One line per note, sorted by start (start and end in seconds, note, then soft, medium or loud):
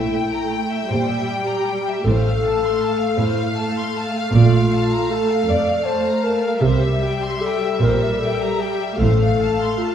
0.00 0.48 A#1 soft
0.00 0.70 A#2 soft
0.00 0.87 A3 soft
0.00 0.64 E4 medium
0.00 0.15 E5 soft
0.00 2.08 G5 soft
0.15 0.34 G5 soft
0.32 0.52 A#5 soft
0.52 0.71 G5 soft
0.70 0.90 E5 soft
0.89 1.86 A#2 soft
0.89 2.07 G3 soft
0.89 2.03 G4 medium
0.89 1.10 C5 soft
1.07 1.28 E5 soft
1.25 1.47 G5 soft
1.46 1.67 A#5 soft
1.66 1.87 G5 soft
1.87 2.07 E5 soft
2.04 2.79 A1 soft
2.04 3.00 A2 soft
2.04 6.58 A3 soft
2.04 3.20 A4 medium
2.04 2.25 C5 soft
2.04 6.62 F5 soft
2.26 2.45 F5 soft
2.44 2.64 A5 soft
2.63 2.82 C6 soft
2.80 3.00 A5 soft
2.98 3.19 F5 soft
3.18 4.13 A2 soft
3.18 3.58 E4 medium
3.18 3.39 C5 soft
3.39 3.59 F5 soft
3.57 3.77 A5 soft
3.77 3.97 C6 soft
3.96 4.16 A5 soft
4.16 4.35 F5 soft
4.33 5.06 A#1 medium
4.33 5.26 A#2 medium
4.33 5.12 F4 medium
4.33 4.52 D5 soft
4.54 4.73 F5 soft
4.73 4.92 A5 soft
4.92 5.10 A#5 soft
5.11 5.51 A4 medium
5.11 5.29 A5 soft
5.30 5.49 F5 soft
5.47 6.40 F2 soft
5.47 5.67 D5 soft
5.47 5.87 D5 medium
5.66 5.85 F5 soft
5.84 6.26 C5 medium
5.84 6.04 A5 soft
6.05 6.24 A#5 soft
6.23 6.64 A#4 medium
6.23 6.43 A5 soft
6.42 6.62 F5 soft
6.61 7.38 C2 soft
6.61 7.60 C3 medium
6.61 8.95 G3 soft
6.61 7.43 G4 medium
6.61 6.82 C5 soft
6.61 8.94 E5 soft
6.84 7.03 E5 soft
7.05 7.24 G5 soft
7.24 7.43 C6 soft
7.41 7.81 A4 medium
7.46 7.64 G5 soft
7.65 7.83 E5 soft
7.81 8.55 A#1 soft
7.81 8.77 A#2 soft
7.81 8.21 A#4 medium
7.81 8.01 C5 soft
8.03 8.21 E5 soft
8.19 8.62 A4 soft
8.19 8.41 G5 soft
8.42 8.60 A#5 soft
8.60 8.97 G4 medium
8.60 8.80 G5 soft
8.81 9.00 E5 soft
8.97 9.76 A1 soft
8.97 9.95 A2 soft
8.97 9.95 A3 soft
8.97 9.79 A4 medium
8.97 9.19 C5 soft
8.97 9.95 F5 soft
9.23 9.41 F5 soft
9.41 9.60 A5 soft
9.61 9.81 C6 soft
9.78 9.95 F4 soft
9.82 9.95 A5 soft